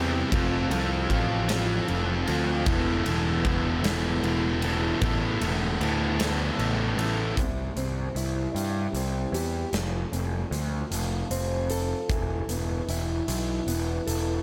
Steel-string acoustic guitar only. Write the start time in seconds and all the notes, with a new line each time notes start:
7.39 C3
7.77 C4
8.16 E4
8.56 G3
8.96 C4
9.34 G4
9.73 F3
10.13 C4
10.53 F4
10.93 F3
11.31 C4
11.70 A4
12.10 E3
12.49 B3
12.89 E4
13.28 E3
13.67 B3
14.07 A4